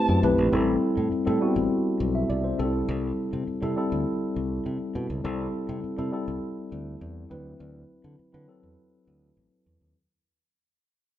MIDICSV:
0, 0, Header, 1, 5, 480
1, 0, Start_track
1, 0, Tempo, 588813
1, 430, Time_signature, 4, 2, 24, 8
1, 9114, End_track
2, 0, Start_track
2, 0, Title_t, "Soprano saxophone"
2, 0, Program_c, 0, 64
2, 0, Note_on_c, 0, 81, 106
2, 200, Note_off_c, 0, 81, 0
2, 9114, End_track
3, 0, Start_track
3, 0, Title_t, "Tine electric piano"
3, 0, Program_c, 1, 4
3, 0, Control_c, 1, 64, 127
3, 0, Note_on_c, 1, 57, 76
3, 0, Note_on_c, 1, 60, 77
3, 0, Note_on_c, 1, 64, 73
3, 0, Note_on_c, 1, 67, 71
3, 0, Note_on_c, 1, 71, 84
3, 0, Note_on_c, 1, 72, 89
3, 185, Note_off_c, 1, 57, 0
3, 185, Note_on_c, 1, 57, 77
3, 189, Note_off_c, 1, 60, 0
3, 189, Note_on_c, 1, 60, 74
3, 191, Note_off_c, 1, 64, 0
3, 191, Note_on_c, 1, 64, 78
3, 194, Note_off_c, 1, 67, 0
3, 194, Note_on_c, 1, 67, 77
3, 196, Note_off_c, 1, 71, 0
3, 196, Note_on_c, 1, 71, 92
3, 342, Note_off_c, 1, 57, 0
3, 344, Note_off_c, 1, 60, 0
3, 345, Note_off_c, 1, 64, 0
3, 346, Note_off_c, 1, 67, 0
3, 347, Note_off_c, 1, 71, 0
3, 425, Note_on_c, 1, 55, 92
3, 428, Note_on_c, 1, 60, 91
3, 432, Note_on_c, 1, 64, 87
3, 436, Note_on_c, 1, 69, 105
3, 442, Control_c, 1, 64, 0
3, 451, Note_off_c, 1, 72, 0
3, 574, Control_c, 1, 64, 127
3, 812, Note_off_c, 1, 55, 0
3, 814, Note_off_c, 1, 60, 0
3, 816, Note_off_c, 1, 64, 0
3, 818, Note_off_c, 1, 69, 0
3, 1025, Note_on_c, 1, 55, 81
3, 1029, Note_on_c, 1, 60, 84
3, 1033, Note_on_c, 1, 64, 70
3, 1034, Note_on_c, 1, 69, 94
3, 1105, Note_off_c, 1, 55, 0
3, 1107, Note_off_c, 1, 60, 0
3, 1109, Note_off_c, 1, 64, 0
3, 1109, Note_off_c, 1, 69, 0
3, 1147, Note_on_c, 1, 55, 90
3, 1151, Note_on_c, 1, 59, 69
3, 1154, Note_on_c, 1, 64, 84
3, 1158, Note_on_c, 1, 66, 98
3, 1204, Note_off_c, 1, 59, 0
3, 1204, Note_on_c, 1, 60, 78
3, 1753, Note_on_c, 1, 76, 68
3, 1764, Note_off_c, 1, 55, 0
3, 1767, Note_off_c, 1, 64, 0
3, 1769, Note_off_c, 1, 66, 0
3, 1792, Note_off_c, 1, 60, 0
3, 1866, Note_off_c, 1, 76, 0
3, 1871, Note_on_c, 1, 74, 71
3, 1985, Note_off_c, 1, 74, 0
3, 1991, Note_on_c, 1, 72, 62
3, 2105, Note_on_c, 1, 55, 88
3, 2108, Note_on_c, 1, 60, 86
3, 2110, Note_on_c, 1, 62, 66
3, 2114, Note_on_c, 1, 69, 100
3, 2121, Control_c, 1, 64, 0
3, 2164, Note_off_c, 1, 62, 0
3, 2166, Note_on_c, 1, 64, 87
3, 2220, Note_off_c, 1, 72, 0
3, 2256, Control_c, 1, 64, 127
3, 2781, Note_off_c, 1, 55, 0
3, 2783, Note_off_c, 1, 60, 0
3, 2785, Note_off_c, 1, 69, 0
3, 2811, Note_off_c, 1, 64, 0
3, 2949, Note_on_c, 1, 55, 86
3, 2954, Note_on_c, 1, 60, 80
3, 2957, Note_on_c, 1, 64, 82
3, 2961, Note_on_c, 1, 69, 96
3, 3027, Note_off_c, 1, 55, 0
3, 3030, Note_off_c, 1, 60, 0
3, 3031, Note_off_c, 1, 64, 0
3, 3033, Note_off_c, 1, 69, 0
3, 3069, Note_on_c, 1, 55, 90
3, 3072, Note_on_c, 1, 60, 86
3, 3077, Note_on_c, 1, 64, 88
3, 3079, Note_on_c, 1, 69, 94
3, 3686, Note_off_c, 1, 55, 0
3, 3687, Note_off_c, 1, 60, 0
3, 3690, Note_off_c, 1, 64, 0
3, 3691, Note_off_c, 1, 69, 0
3, 4270, Note_on_c, 1, 55, 92
3, 4272, Note_on_c, 1, 60, 88
3, 4276, Note_on_c, 1, 64, 83
3, 4281, Note_on_c, 1, 69, 111
3, 4284, Control_c, 1, 64, 0
3, 4406, Control_c, 1, 64, 127
3, 4656, Note_off_c, 1, 55, 0
3, 4657, Note_off_c, 1, 60, 0
3, 4659, Note_off_c, 1, 64, 0
3, 4661, Note_off_c, 1, 69, 0
3, 4869, Note_on_c, 1, 55, 89
3, 4874, Note_on_c, 1, 60, 77
3, 4876, Note_on_c, 1, 64, 80
3, 4880, Note_on_c, 1, 69, 91
3, 4948, Note_off_c, 1, 55, 0
3, 4950, Note_off_c, 1, 60, 0
3, 4952, Note_off_c, 1, 64, 0
3, 4954, Note_off_c, 1, 69, 0
3, 4991, Note_on_c, 1, 55, 90
3, 4994, Note_on_c, 1, 60, 85
3, 4999, Note_on_c, 1, 64, 85
3, 5002, Note_on_c, 1, 69, 102
3, 5607, Note_off_c, 1, 55, 0
3, 5608, Note_off_c, 1, 60, 0
3, 5611, Note_off_c, 1, 64, 0
3, 5612, Note_off_c, 1, 69, 0
3, 5950, Note_on_c, 1, 54, 89
3, 5953, Note_on_c, 1, 60, 87
3, 5957, Note_on_c, 1, 64, 81
3, 5959, Note_on_c, 1, 71, 94
3, 5965, Control_c, 1, 64, 0
3, 6115, Control_c, 1, 64, 127
3, 6624, Note_off_c, 1, 54, 0
3, 6625, Note_off_c, 1, 60, 0
3, 6627, Note_off_c, 1, 64, 0
3, 6629, Note_off_c, 1, 71, 0
3, 6787, Note_on_c, 1, 54, 78
3, 6791, Note_on_c, 1, 60, 78
3, 6795, Note_on_c, 1, 64, 77
3, 6797, Note_on_c, 1, 71, 87
3, 6867, Note_off_c, 1, 54, 0
3, 6869, Note_off_c, 1, 60, 0
3, 6871, Note_off_c, 1, 64, 0
3, 6872, Note_off_c, 1, 71, 0
3, 6909, Note_on_c, 1, 54, 94
3, 6913, Note_on_c, 1, 60, 82
3, 6917, Note_on_c, 1, 64, 76
3, 6920, Note_on_c, 1, 69, 102
3, 7526, Note_off_c, 1, 54, 0
3, 7528, Note_off_c, 1, 60, 0
3, 7530, Note_off_c, 1, 64, 0
3, 7531, Note_off_c, 1, 69, 0
3, 8124, Control_c, 1, 64, 0
3, 9114, End_track
4, 0, Start_track
4, 0, Title_t, "Fingered electric bass"
4, 0, Program_c, 2, 33
4, 70, Note_on_c, 2, 42, 82
4, 162, Note_off_c, 2, 42, 0
4, 189, Note_on_c, 2, 35, 99
4, 281, Note_off_c, 2, 35, 0
4, 311, Note_on_c, 2, 34, 90
4, 403, Note_off_c, 2, 34, 0
4, 428, Note_on_c, 2, 33, 100
4, 613, Note_off_c, 2, 33, 0
4, 793, Note_on_c, 2, 45, 80
4, 884, Note_off_c, 2, 45, 0
4, 1035, Note_on_c, 2, 45, 95
4, 1126, Note_off_c, 2, 45, 0
4, 1271, Note_on_c, 2, 33, 85
4, 1363, Note_off_c, 2, 33, 0
4, 1632, Note_on_c, 2, 35, 92
4, 1816, Note_off_c, 2, 35, 0
4, 1872, Note_on_c, 2, 36, 83
4, 2056, Note_off_c, 2, 36, 0
4, 2115, Note_on_c, 2, 36, 99
4, 2298, Note_off_c, 2, 36, 0
4, 2352, Note_on_c, 2, 36, 114
4, 2536, Note_off_c, 2, 36, 0
4, 2715, Note_on_c, 2, 48, 88
4, 2806, Note_off_c, 2, 48, 0
4, 2954, Note_on_c, 2, 48, 92
4, 3046, Note_off_c, 2, 48, 0
4, 3195, Note_on_c, 2, 38, 86
4, 3286, Note_off_c, 2, 38, 0
4, 3557, Note_on_c, 2, 36, 88
4, 3739, Note_off_c, 2, 36, 0
4, 3798, Note_on_c, 2, 48, 84
4, 3888, Note_off_c, 2, 48, 0
4, 4038, Note_on_c, 2, 47, 101
4, 4128, Note_off_c, 2, 47, 0
4, 4156, Note_on_c, 2, 37, 93
4, 4247, Note_off_c, 2, 37, 0
4, 4276, Note_on_c, 2, 36, 118
4, 4459, Note_off_c, 2, 36, 0
4, 4637, Note_on_c, 2, 48, 96
4, 4728, Note_off_c, 2, 48, 0
4, 4878, Note_on_c, 2, 48, 86
4, 4968, Note_off_c, 2, 48, 0
4, 5116, Note_on_c, 2, 36, 88
4, 5207, Note_off_c, 2, 36, 0
4, 5478, Note_on_c, 2, 38, 90
4, 5660, Note_off_c, 2, 38, 0
4, 5716, Note_on_c, 2, 40, 90
4, 5899, Note_off_c, 2, 40, 0
4, 5958, Note_on_c, 2, 38, 94
4, 6140, Note_off_c, 2, 38, 0
4, 6197, Note_on_c, 2, 38, 107
4, 6379, Note_off_c, 2, 38, 0
4, 6556, Note_on_c, 2, 50, 96
4, 6647, Note_off_c, 2, 50, 0
4, 6799, Note_on_c, 2, 50, 95
4, 6889, Note_off_c, 2, 50, 0
4, 7036, Note_on_c, 2, 40, 72
4, 7127, Note_off_c, 2, 40, 0
4, 7396, Note_on_c, 2, 38, 88
4, 7579, Note_off_c, 2, 38, 0
4, 7637, Note_on_c, 2, 33, 80
4, 7727, Note_off_c, 2, 33, 0
4, 7877, Note_on_c, 2, 40, 83
4, 7968, Note_off_c, 2, 40, 0
4, 7997, Note_on_c, 2, 39, 83
4, 8088, Note_off_c, 2, 39, 0
4, 9114, End_track
5, 0, Start_track
5, 0, Title_t, "Muted fingered electric bass strokes"
5, 912, Note_on_c, 9, 29, 47
5, 994, Note_off_c, 9, 29, 0
5, 2834, Note_on_c, 9, 29, 48
5, 2915, Note_off_c, 9, 29, 0
5, 4759, Note_on_c, 9, 29, 49
5, 4841, Note_off_c, 9, 29, 0
5, 6678, Note_on_c, 9, 29, 47
5, 6760, Note_off_c, 9, 29, 0
5, 9114, End_track
0, 0, End_of_file